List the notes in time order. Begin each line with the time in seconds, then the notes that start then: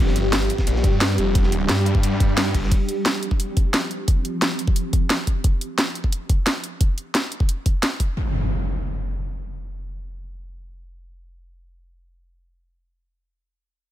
Already playing: G4
0.00 G1 G3 D4
0.07 snare
0.16 closed hi-hat, ride
0.32 snare, closed hi-hat, ride
0.50 closed hi-hat, ride
0.58 kick, snare
0.67 A#1, closed hi-hat, ride
0.76 snare
0.84 G2, kick, closed hi-hat, ride
1.01 snare, closed hi-hat, ride
1.10 snare
1.18 F1, closed hi-hat, ride
1.35 kick, closed hi-hat, ride
1.43 snare
1.52 closed hi-hat, ride
1.60 ride
1.69 G2, snare, closed hi-hat, ride
1.85 closed hi-hat, ride
1.95 kick
2.03 closed hi-hat, ride
2.12 ride
2.20 kick, closed hi-hat, ride
2.29 ride
2.37 snare, closed hi-hat, ride
2.45 snare
2.54 G1, kick, closed hi-hat, open hi-hat
2.63 snare
2.71 F3 C4, kick, closed hi-hat
2.89 closed hi-hat
3.06 snare, closed hi-hat
3.23 closed hi-hat
3.31 kick
3.40 closed hi-hat
3.57 kick, closed hi-hat
3.74 snare, closed hi-hat
3.91 closed hi-hat
4.08 kick, closed hi-hat
4.25 closed hi-hat
4.42 snare, closed hi-hat
4.59 closed hi-hat
4.68 kick
4.76 closed hi-hat
4.93 kick, closed hi-hat
5.10 snare, closed hi-hat
5.27 kick, closed hi-hat
5.44 kick, closed hi-hat
5.61 closed hi-hat
5.78 snare, closed hi-hat
5.95 closed hi-hat
6.04 kick
6.12 closed hi-hat
6.29 kick, closed hi-hat
6.47 snare, closed hi-hat
6.64 closed hi-hat
6.81 kick, closed hi-hat
6.98 closed hi-hat
7.15 snare, closed hi-hat
7.32 closed hi-hat
7.40 kick
7.49 closed hi-hat
7.66 kick, closed hi-hat
7.83 snare, closed hi-hat
8.00 kick, closed hi-hat
8.17 impact